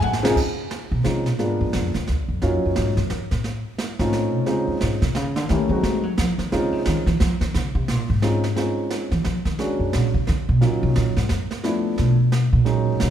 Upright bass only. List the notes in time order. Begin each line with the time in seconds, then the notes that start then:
0.00 A1
0.92 B2
1.06 C3
1.26 A#2
1.41 G#2
1.61 F#2
1.75 F2
1.95 D#2
2.09 D2
2.28 F2
2.43 F#2
2.55 F2
2.66 F#2
2.78 G#2
2.97 F#2
3.12 F2
3.31 A2
3.99 G#2
4.14 A2
4.34 C3
4.48 C#3
4.67 F2
4.82 G#2
5.02 C3
5.16 C#3
5.36 D3
5.50 D#3
5.69 F#3
5.83 G#3
6.03 F#3
6.18 F3
6.38 D#3
6.53 C#3
6.72 C3
6.87 D#3
7.06 E3
7.21 F3
7.41 D#3
7.55 C#3
7.75 C3
7.90 A#2
8.10 G#2
9.11 E3
9.26 F3
9.45 D#3
9.60 D3
9.79 F#2
9.95 A#2
10.14 C#3
10.29 D3
10.49 B2
10.63 A#2
10.83 C3
10.97 A#2
11.17 G#2
11.31 F#2
11.99 B2
12.53 A#2
13.02 B2